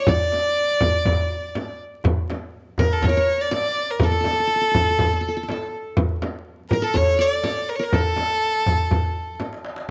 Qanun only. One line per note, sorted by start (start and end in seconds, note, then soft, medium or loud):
0.00 0.14 C#5 medium
0.08 1.76 D5 medium
2.79 3.09 A#4 medium
3.02 3.17 C#5 medium
3.09 4.09 A#4 medium
3.17 3.57 C#5 medium
3.51 4.50 D5 medium
4.03 4.11 A4 medium
4.12 4.20 A4 medium
4.21 4.26 A4 soft
4.26 4.32 A4 soft
4.33 4.40 A4 soft
4.40 4.47 A4 soft
4.47 4.55 A4 soft
4.56 4.61 A4 soft
4.61 4.71 A4 soft
4.71 4.75 A4 soft
4.76 4.83 A4 soft
4.84 4.90 A4 soft
4.91 4.98 A4 soft
4.99 5.06 A4 soft
5.07 5.13 A4 soft
5.13 5.20 A4 soft
5.21 5.28 A4 soft
5.28 5.36 A4 soft
5.37 5.43 A4 soft
5.43 5.51 A4 soft
5.51 6.69 A4 soft
6.73 6.88 A#4 medium
6.82 7.85 A4 medium
6.94 7.25 C#5 medium
7.19 7.50 D5 medium
7.44 8.46 C#5 medium
7.79 8.00 A#4 medium
7.94 9.36 A4 medium